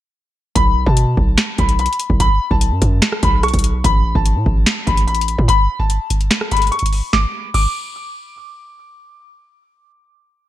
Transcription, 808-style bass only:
0.56 B1
0.86 B2
1.17 B1
1.59 B1
2.10 B1
2.51 B1
2.71 F#2
2.82 F#2
3.23 B1
3.54 B1
3.84 A1
4.15 A1
4.36 A2
4.46 A1
4.87 A1
5.38 A2

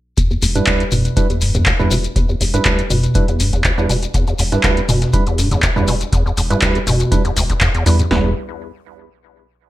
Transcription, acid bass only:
0.17 E2
0.31 E2
0.43 E2
0.56 G2
0.67 D2
0.80 G2
0.92 B2
1.17 E2
1.30 E2
1.42 G2
1.55 E2
1.66 D2
1.80 E2
1.91 B2
2.16 E2
2.29 E2
2.41 E2
2.54 G2
2.66 D2
2.79 G2
2.90 B2
3.15 E2
3.28 E2
3.40 G2
3.53 E2
3.65 D2
3.78 E2
3.90 B2
4.15 E2
4.28 E2
4.39 E2
4.52 G2
4.64 D2
4.77 G2
4.89 B2
5.14 E2
5.27 E2
5.39 G2
5.52 E2
5.63 D2
5.77 E2
5.88 B2
6.13 E2
6.26 E2
6.37 E2
6.51 G2
6.62 D2
6.75 G2
6.87 B2
7.12 E2
7.25 E2
7.37 D2
7.50 E2
7.61 E2
7.75 E2
7.86 E2
8.11 E2

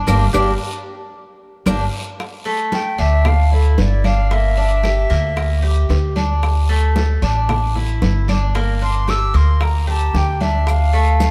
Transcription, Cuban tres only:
0.07 A#3 D4 G4
0.33 A#3 D4 G4
1.66 A#3 D4 G4
2.45 A3
2.98 D4
3.51 E4
4.04 D4
4.31 A#3
4.57 D4
4.83 G4
5.10 A#3
5.63 G4
6.16 D4
6.69 A3
7.22 D4
7.75 E4
8.29 D4
8.55 A#3
8.81 D4
9.08 G4
9.34 A#3
9.87 G4
10.41 D4
10.93 A3

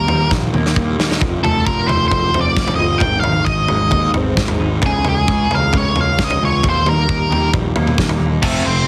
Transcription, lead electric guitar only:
Already playing: A#4
1.44 A4
1.66 A#4
1.87 C5
2.08 C5
2.41 D5
2.75 D#5
2.98 G5
3.20 F5
3.45 D#5
4.86 G#4
5.09 G#4
5.55 F5
5.77 C#5
6.01 F5
6.24 D#5
6.45 C#5
6.69 C5
6.89 A#4
8.44 A3 A4
8.65 C4 C5

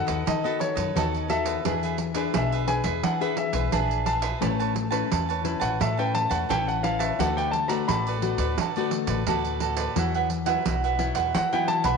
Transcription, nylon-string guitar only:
Already playing: D#3 B3 F#4 A4
0.27 D#3
0.45 B3 F#4 A4
0.96 D#3 B3 F#4 A4
1.29 B3 F#4 A4
1.65 E3 D4 G#4 B4
2.15 D4 G#4 B4
2.35 B2
2.67 D4 G#4 B4
3.03 E3
3.21 D4 G#4 B4
3.72 D4 G#4 B4
4.41 A3 C#4 E4 B4
4.91 C#4 E4 B4
5.11 E3
5.44 C#4 E4 B4
5.80 A3
5.99 C#4 E4 B4
6.49 E3 C#4 E4 B4
6.83 C#4 E4 B4
7.19 D3 A3 B3 F#4
7.69 A3 B3 F#4
7.88 A2
8.22 A3 B3 F#4
8.58 D3
8.77 A3 B3 F#4
9.27 A2 A3 B3 F#4
9.96 E3 F#3 B3 E4
10.46 F#3 B3 E4
10.66 B2
10.98 F#3 B3 E4
11.35 E3
11.53 F#3 B3 E4

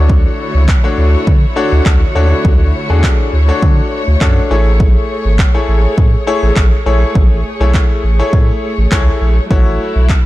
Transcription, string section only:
Already playing: D3 A3 E4 F#4 C#5
4.51 G#4
9.51 F#3 E4

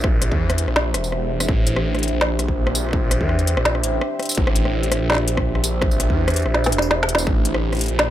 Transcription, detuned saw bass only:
Already playing: A#1
0.32 E2
0.68 A#1
0.95 E1
1.48 A1
2.13 A#1
3.21 E2
3.57 A#1
3.83 A1
4.38 A1
5.02 A#1
6.10 E2
6.46 A#1
6.73 E1
7.27 A1
7.91 A#1

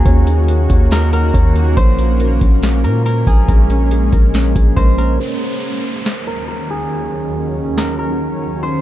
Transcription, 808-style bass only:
0.06 D#2
0.70 D#2
1.34 D#2
1.77 A#1
2.41 A#1
2.84 A#2
3.27 A#1
3.48 A#1
4.13 A#1
4.56 A#1
4.77 A#1

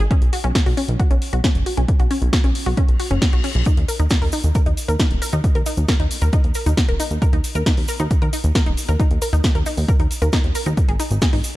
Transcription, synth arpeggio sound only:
0.11 C#4
0.33 F#4
0.44 C#4
0.66 F#4
0.77 C#4
0.99 F#4
1.11 C#4
1.33 F#4
1.44 C#4
1.66 F#4
1.77 C#4
2.00 F#4
2.11 C#4
2.33 F#4
2.44 C#4
2.66 F#4
2.77 C#4
3.00 F#4
3.11 C#4
3.33 F#4
3.44 C#4
3.66 D#4
3.88 A#4
4.00 D#4
4.22 A#4
4.33 D#4
4.55 A#4
4.66 D#4
4.88 A#4
5.00 D#4
5.22 A#4
5.33 D#4
5.55 A#4
5.66 D#4
5.88 A#4
6.00 D#4
6.22 A#4
6.33 D#4
6.55 A#4
6.66 D#4
6.88 A#4
7.00 D#4
7.22 A#4
7.33 D#4
7.55 A#4
7.66 D#4
7.88 A#4
8.00 D#4
8.22 A#4
8.33 D#4
8.55 A#4
8.66 D#4
8.89 A#4
9.00 D#4
9.22 A#4
9.33 D#4
9.55 A#4
9.66 D#4
9.89 A#4
10.00 D#4
10.22 A#4
10.33 D#4
10.55 A#4
10.66 D#4
10.88 G#4
11.00 D#4
11.22 G#4
11.33 D#4

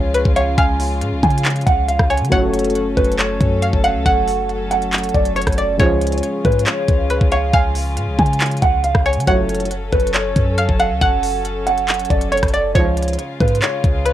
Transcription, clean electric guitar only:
Already playing: C#5
0.36 F5
0.58 G#5
1.23 G#5
1.67 F#5
1.88 F5
2.10 G#5
2.32 C#5
2.97 B4
3.19 C#5
3.84 F5
4.06 F#5
4.71 F#5
5.14 D5
5.36 C#5
5.58 D5
5.79 C#5
6.45 B4
6.67 C#5
7.32 F5
7.54 G#5
8.19 G#5
8.62 F#5
8.84 F5
9.06 G#5
9.28 C#5
9.93 B4
10.14 C#5
10.80 F5
11.01 F#5
11.67 F#5
12.10 D5
12.32 C#5
12.54 D5
12.75 C#5
13.41 B4
13.62 C#5

